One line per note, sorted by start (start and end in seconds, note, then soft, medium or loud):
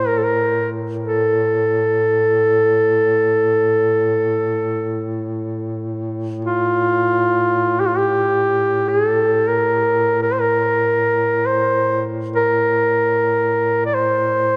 0.00 14.57 A2 soft
0.07 0.19 A#4 medium
0.18 0.26 A4 soft
0.24 0.70 A#4 medium
1.03 5.19 A4 medium
6.45 7.82 F4 medium
7.80 7.90 G4 medium
7.88 7.99 F4 medium
7.98 8.90 G4 medium
8.88 9.07 G#4 medium
9.07 9.50 A4 medium
9.48 10.22 A#4 medium
10.22 10.35 A#4 medium
10.33 10.42 C5 medium
10.41 11.48 A#4 medium
11.46 12.04 C5 medium
12.36 13.82 A#4 medium
13.86 13.96 D5 soft
13.94 14.57 C5 medium